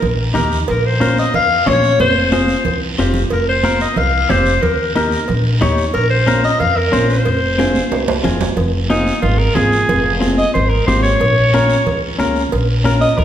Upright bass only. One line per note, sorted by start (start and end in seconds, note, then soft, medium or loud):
0.03 0.29 A#1 medium
0.36 0.62 D#2 medium
0.69 1.21 A#1 loud
1.34 1.60 F2 medium
1.67 1.93 A#1 medium
2.00 2.52 F1 loud
2.66 2.92 C2 medium
2.99 3.25 F1 medium
3.32 3.84 F1 medium
3.97 4.23 C2 medium
4.30 4.56 F1 loud
4.63 5.15 D#2 medium
5.29 5.55 A#1 loud
5.62 5.88 D#2 medium
5.94 6.47 A#1 loud
6.60 6.86 F2 medium
6.93 7.19 A#1 medium
7.26 7.79 F1 loud
7.92 8.18 C2 medium
8.24 8.51 F1 medium
8.56 9.09 F1 loud
9.23 9.49 G#1 medium
9.56 9.82 G#1 medium
9.89 10.42 F1 loud
10.55 10.81 G#1 medium
10.88 11.14 G#1 medium
11.20 11.73 A#1 loud
11.87 12.13 C#2 medium
12.19 12.46 C#2 medium
12.53 13.05 A#1 loud
13.19 13.24 C#2 medium